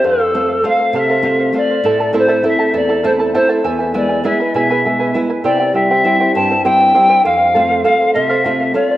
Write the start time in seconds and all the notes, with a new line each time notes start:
0.04 F2 A4 C5 F5
0.19 C5 F5
0.34 A3 C4 F4 A4 C5 F5
0.48 C5 F5
0.63 A3 C4 F4 A4 C5 F5
0.67 F5
0.79 C5 F5
0.93 C3 A4 C5 F5
0.97 E5
1.10 A4 C5 F5
1.22 A3 C4 F4 A4 C5 F5
1.39 C5 F5
1.53 A3 C4 F4 A4 C5 F5
1.57 D5
1.70 C5 F5
1.84 A2 E4 A4 C5 E5 A5
2.00 E4 A4 A5
2.13 A3 C4 E4 A4 C5 E5 A5
2.19 C5
2.28 E4 A4 C5 E5 A5
2.43 A3 C4 E4 A4 E5 A5
2.59 E4 A4 A5
2.74 E2 E4 A4 D5 E5 A5
2.89 E4 A4 A5
3.04 A3 C4 E4 A4 C5 E5 A5
3.19 E4 A4 A5
3.34 A3 C4 E4 A4 C5 E5 A5
3.49 E4 A4 C5 E5 A5
3.64 E2 E4 B4 E5 G#5
3.79 E4 B4 G#5
3.94 G#3 B3 E4 B4 D5 E5 G#5
4.09 E4 B4 G#5
4.24 G#3 B3 E4 G#4 B4 E5 G#5
4.40 E4 B4 G#5
4.54 B2 E4 G#4 B4 E5 G#5
4.70 E4 G#4 B4 E5 G#5
4.85 G#3 B3 E4 B4 E5 G#5
4.99 E4 B4 G#5
5.14 G#3 B3 E4 B4 E5 G#5
5.30 E4 B4 G#5
5.44 C3 E4 G4 C5 D5 E5 G5
5.60 E4 C5 G5
5.73 G3 C4 E4 G4 C5 E5 G5
5.91 E4 G4 C5 E5 G5
6.04 G3 C4 E4 C5 E5 G5
6.20 E4 C5 G5
6.34 G2 E4 C5 E5 G5 A5
6.51 E4 C5 G5
6.65 G3 C4 E4 G4 C5 E5 G5
6.80 E4 C5 G5
6.94 G3 C4 E4 G4 C5 E5 G5
7.09 E4 G4 C5 E5 G5
7.24 F2 A4 C5 F5
7.38 C5 F5
7.54 A3 C4 F4 A4 C5 F5
7.68 C5 F5
7.83 A3 C4 F4 A4 C5 F5
7.99 C5 F5
8.13 C3 A4 C5 D#5 F5
8.24 E5
8.29 A4 C5 F5
8.44 A3 C4 F4 A4 C5 F5
8.60 C5 F5
8.74 A3 C4 F4 A4 C5 D5 F5
8.89 C5 F5